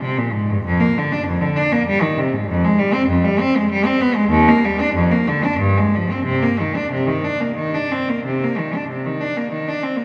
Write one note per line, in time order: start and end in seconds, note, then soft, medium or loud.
0.01 0.16 C3 medium
0.18 0.33 A#2 medium
0.32 0.48 G#2 medium
0.50 0.65 G2 medium
0.65 0.80 F2 medium
0.80 0.95 A#3 medium
0.98 1.12 D3 medium
1.12 1.27 D4 medium
1.27 1.41 F2 medium
1.41 1.56 D3 medium
1.56 1.71 D4 medium
1.72 1.87 A#3 medium
1.89 2.02 G3 medium
2.02 2.17 D#3 medium
2.18 2.32 C3 medium
2.34 2.48 G#2 medium
2.48 2.62 F2 medium
2.65 2.79 G#3 medium
2.79 2.93 G3 medium
2.94 3.09 C4 medium
3.08 3.23 F2 medium
3.25 3.39 G3 medium
3.40 3.55 C4 medium
3.56 3.70 G#3 medium
3.71 3.85 G3 medium
3.86 4.01 C4 medium
4.01 4.17 B3 medium
4.15 4.32 G#3 medium
4.30 4.47 D#2 loud
4.49 4.64 A#3 medium
4.65 4.80 G3 medium
4.81 4.96 D4 medium
4.95 5.10 F2 medium
5.11 5.27 A#3 medium
5.28 5.43 D3 medium
5.44 5.60 D4 medium
5.60 5.75 G2 medium
5.78 5.93 G#3 medium
5.95 6.10 F3 medium
6.12 6.27 C4 medium
6.25 6.41 C3 medium
6.43 6.59 A#3 medium
6.60 6.76 D#3 medium
6.75 6.92 D4 medium
6.92 7.08 C3 medium
7.06 7.24 D#3 medium
7.24 7.41 D4 medium
7.41 7.57 A#3 medium
7.56 7.73 D#3 medium
7.74 7.91 D4 medium
7.91 8.08 C4 medium
8.09 8.26 A#3 medium
8.25 8.42 C3 medium
8.43 8.59 A#3 soft
8.58 8.74 D#3 soft
8.75 8.90 D4 soft
8.89 9.05 C3 soft
9.06 9.21 D#3 soft
9.21 9.36 D4 soft
9.37 9.52 A#3 soft
9.52 9.67 D#3 soft
9.68 9.83 D4 soft
9.83 9.98 C4 soft
9.96 10.05 A#3 soft